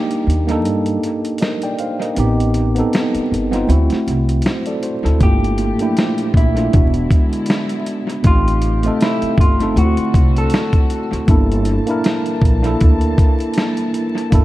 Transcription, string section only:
5.20 A#2 F3 G4
6.73 D3 G#3 E4
8.25 C3 A3 G4
9.77 D3 C4 F#4
11.28 E3 A#3 A5

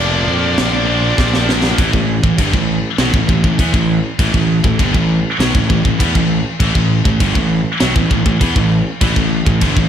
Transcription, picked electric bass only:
0.00 F1
0.28 F2
0.58 A#1
1.18 A#1
1.79 A1
1.94 A1
2.24 A1
2.39 G1
2.53 A1
2.99 B1
3.14 A1
3.29 A1
3.44 A1
3.59 E2
3.74 A1
4.19 A1
4.34 A1
4.65 A1
4.79 G1
4.94 A1
5.40 B1
5.55 A1
5.70 A1
5.85 A1
6.01 E2
6.16 A1
6.60 A1
6.75 A1
7.05 A1
7.21 G1
7.36 A1
7.82 B1
7.96 A1
8.11 A1
8.26 A1
8.41 E2
8.56 A1
9.02 A1
9.16 A1
9.47 A1
9.62 G1
9.77 A1

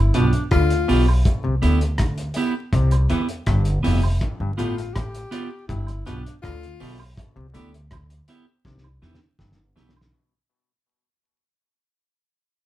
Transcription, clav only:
0.15 B2
0.52 D3
0.88 B2
1.44 C3
1.62 D3
2.73 C3
3.10 E3
3.47 G2
3.84 F2
4.41 G2
4.59 A2
5.69 G2
6.06 B2
6.43 D3
6.80 B2
7.36 C3
7.54 D3
8.65 C3
9.02 E3
9.39 G2
9.76 B2

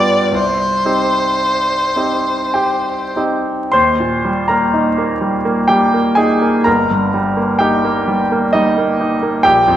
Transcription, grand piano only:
Already playing: G2 B3 F4 G4
0.32 C2
0.85 C4 D#4 G4
1.96 C4 D#4 G4
2.54 G4 G5
3.16 C4 D#4 G4
3.72 D#2 C5 C6
4.00 A#2
4.25 G3
4.48 A#3 A#4 A#5
4.74 D#4
4.98 A#3
5.21 G3
5.45 A#3
5.68 G3 G4 G5
5.94 A#3
6.15 D#4 G#4 G#5
6.42 A#3
6.64 G1 A#4 A#5
6.91 G2
7.14 G3
7.37 A#3
7.59 D#4 G4 G5
7.84 A#3
8.08 G3
8.32 A#3
8.53 G3 D#4 D#5
8.78 A#3
9.01 D#4
9.23 A#3
9.43 A#1 G4 G5
9.68 F2

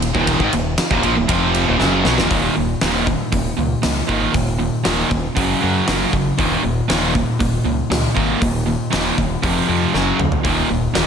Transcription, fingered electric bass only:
Already playing: D#1
0.15 D#1
0.40 G#1
0.53 D#1
0.91 D#1
1.05 A#1
1.17 D#1
1.29 F1
1.68 D#1
1.81 F#1
2.06 B1
2.19 D#1
2.31 D#1
2.57 D#1
2.82 D#1
3.33 D#1
3.57 C#2
3.84 C#2
4.09 G#1
4.34 D#1
4.86 D#1
5.11 D#1
5.37 F#1
5.63 F#2
5.88 F#1
6.13 F#1
6.39 D#1
6.64 D#1
6.90 D#1
7.40 D#1
7.65 C#2
7.91 C#2
8.16 G#1
8.42 D#1
8.93 D#1
9.18 D#1
9.43 F1
9.69 F2
9.94 F#1
10.19 D2
10.45 D#1
10.69 D#1
10.95 D#1

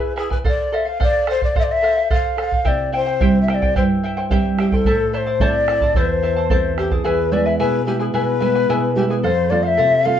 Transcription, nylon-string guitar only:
2.65 C3
3.20 G3 C4 E4
3.76 G2
4.30 G3 C4 E4
4.85 A2
5.39 A3 C4 E4
5.95 E2
6.49 A3 C4 E4
7.04 E2
7.31 G#3 B3 E4
7.60 B2
7.87 G#3 B3 E4
8.13 B2
8.40 G#3 B3 E4
8.69 B2
8.96 G#3 B3 E4
9.23 F2
9.51 A3 C4 F4
9.79 C3
10.06 A3 C4 F4

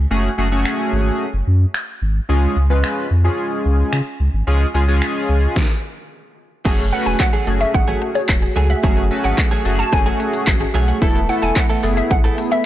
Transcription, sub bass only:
0.11 F#1
0.38 F#1
0.93 G#1
1.33 F#1
1.47 F#2
2.02 G#1
2.29 C#2
2.56 C#2
3.11 F2
3.65 C#2
3.93 C#3
4.20 C#2
4.34 G#1
4.47 C#2
4.74 C#2
5.29 C#2
6.65 F#1
7.06 E1
7.47 F#1
7.74 G#1
8.29 E1
8.56 C#2
8.84 F#1
9.24 G#1
9.65 F#1
9.93 F#1
10.47 G#1
10.74 B1
11.02 E1
11.43 E1
11.84 F#1
12.11 A1

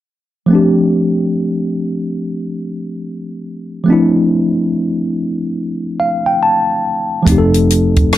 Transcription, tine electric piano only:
0.46 F3 A3
0.51 C4 D4
0.55 G4
3.84 F3 A3
3.88 C4 D4
3.92 E4
6.00 F5
6.26 G5
6.43 A5
7.23 F3 A3
7.27 C4 D#4
7.32 G4
7.38 A4

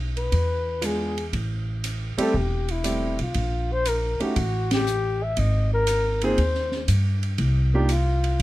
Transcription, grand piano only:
0.81 G#3 B3 D4 F4
2.18 G3 A3 C4 E4 G4
2.84 G3 A3 C4 E4 G4
4.20 A3 C#4 D#4 E4 G4
6.23 A#3 C4 D#4 F4 G#4
7.74 A#3 D4 D#4 F4 G4

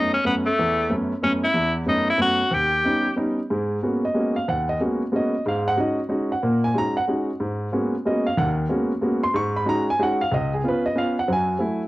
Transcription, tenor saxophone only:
Already playing: D#4
0.14 C#4
0.26 B3
0.46 A3
1.24 C#4
1.44 E4
1.89 D#4
2.10 E4
2.22 F#4
2.54 G4

